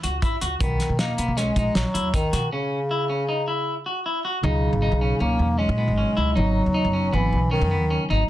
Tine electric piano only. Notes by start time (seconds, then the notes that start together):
4.43 B2 C#3 F#3 D#4
6.36 C#3 F#3 B3 D#4